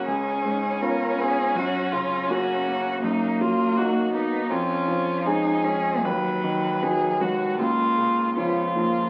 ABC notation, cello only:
X:1
M:4/4
L:1/8
Q:1/4=80
K:Dbmix
V:1 name="Cello"
D8 | B,3 C D2 E D | ^F,3 A, B,2 C B, |]